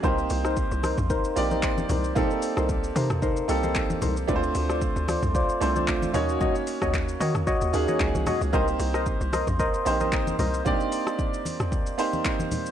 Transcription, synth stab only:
X:1
M:4/4
L:1/16
Q:"Swing 16ths" 1/4=113
K:Cdor
V:1 name="Synth stab"
[EBc] z2 [EBc] z2 [EBc] z [EBc]3 [EBc]3 [EBc]2 | [EBc] z2 [EBc] z2 [EBc] z [EBc]3 [EBc] z2 [EBc] z | [Fcd] z2 [Fcd] z2 [Fcd] z [Fcd]3 [Fcd]3 [_G_de]2 | [_G_de] z2 [Gde] z2 [Gde] z [Gde]3 [Gde] z2 [Gde] z |
[Bce] z2 [Bce] z2 [Bce] z [Bce]3 [Bce]3 [Bce]2 | z16 |]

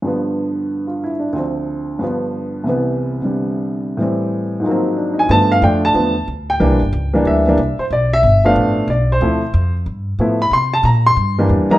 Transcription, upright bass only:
X:1
M:4/4
L:1/8
Q:"Swing" 1/4=183
K:Gmix
V:1 name="Upright bass" clef=bass
z8 | z8 | z8 | z8 |
G,,2 F,,2 E,,2 D,,2 | (3C,, _B,,, G,,, ^C,,2 D,,2 =C,, z | B,,,2 G,,,2 A,,,2 B,,,2 | D,,2 F,,2 G,,2 A,,2 |
C,2 _B,,2 G,,2 E,, z |]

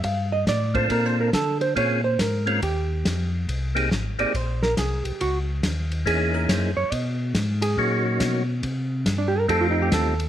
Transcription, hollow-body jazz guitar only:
X:1
M:4/4
L:1/16
Q:"Swing" 1/4=140
K:Gm
V:1 name="Hollow-body jazz guitar"
f2 e2 d2 c2 (3B2 c2 B2 A2 c2 | _d2 c2 B2 _A2 G6 z2 | z6 d2 c2 B2 _A2 G2 | _G2 z6 _A2 B2 c2 _d2 |
^d6 _A4 z6 | z4 z D G B A F E G A3 z |]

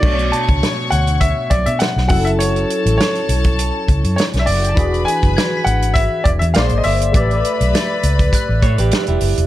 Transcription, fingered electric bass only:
X:1
M:4/4
L:1/16
Q:"Swing 16ths" 1/4=101
K:Bm
V:1 name="Fingered electric bass" clef=bass
B,,,2 z C,, z2 D,,3 z B,,, B,, z B,,, F,,,2- | F,,,2 z A,,, z2 B,,,3 z C,, F,, z B,,, F,,,2 | E,,,2 z F,,, z2 ^G,,,3 z E,,, E,, ^A,,, G,,, =G,,,2 | A,,,2 z B,,, z2 C,,2 z A,,, A,, A,,, z E,,, F,,, E,,, |]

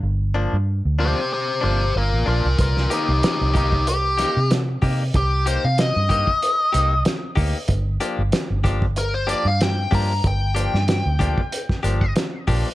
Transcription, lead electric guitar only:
X:1
M:4/4
L:1/16
Q:"Swing 16ths" 1/4=94
K:Gm
V:1 name="Lead electric guitar"
z6 [Gc]2 [Gc]2 [Gc]2 [FB]2 [FB]2 | [FB]2 [EG]2 [EG]2 [EG]2 G4 z4 | G2 c f e8 z4 | z8 B c d f g2 b2 |
g12 z4 |]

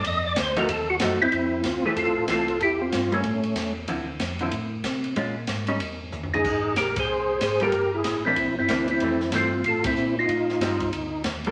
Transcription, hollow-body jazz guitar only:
X:1
M:4/4
L:1/8
Q:"Swing" 1/4=187
K:Fmix
V:1 name="Hollow-body jazz guitar"
z3 [F,A,E_G] z2 [F,A,EG] z | [K:F] z3 [E,A,C]3 [E,A,C] z | z3 [G,B,_D] z4 | [D,F,CE] z2 [D,F,CE] z4 |
[_A,_DF] z2 [G,D_E] z4 | z6 z [G,B,FA] | z3 [E,B,D] z2 [E,B,D] z | [E,A,C] z [E,A,C] z4 z |
z2 [G,C_E] z4 [G,B,FA] |]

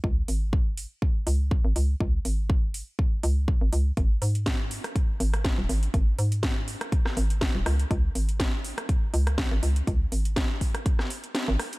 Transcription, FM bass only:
X:1
M:4/4
L:1/16
Q:"Swing 16ths" 1/4=122
K:C#dor
V:1 name="FM bass" clef=bass
C,,2 G,,,4- G,,, z3 C,,3 G,,, C,,2 | C,,2 G,,,4- G,,, z3 C,,3 G,,, C,,2 | G,,,2 G,,4- G,, z3 G,,,3 D,,, G,,,2 | G,,,2 G,,4- G,, z3 G,,,3 D,,, C,,2 |
C,,2 G,,,4- G,,, z3 C,,3 G,,, C,,2 | C,,2 G,,,4- G,,, z6 G,,, z2 |]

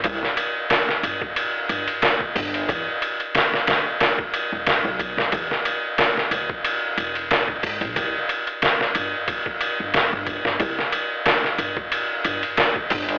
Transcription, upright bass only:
X:1
M:4/4
L:1/16
Q:"Swing 16ths" 1/4=91
K:Gmix
V:1 name="Upright bass" clef=bass
C,, z4 z G,,, z3 G,,, z3 G,,,2 | E,, z4 z D,, z4 E,,,2 B,,,2 E,,, | E,, z4 z D,, z3 E,,,4 ^G,, B,,, | C,, z4 z G,,, z4 G,,,2 G,,,2 G,,, |
C,, z4 z G,,, z3 G,,, z3 G,,,2 |]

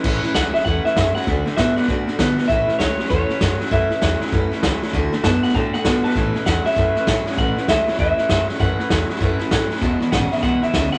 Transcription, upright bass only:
X:1
M:4/4
L:1/8
Q:"Swing" 1/4=196
K:A
V:1 name="Upright bass" clef=bass
A,,, z C,, z E,, z F,, z | D,, z A,, z B,, z D, z | A,,, z C,, z E,, z F,, z | F,, z E,, z F,, z C,, z |
D,, z F,, z A,, z B,, z | A,,, z E,, z F,, z A,, z | A,,, z C,, z E,, z F,, z | F,, z E,, z F,, z A,, z |
E,,, z G,,, z B,,, z D,, z |]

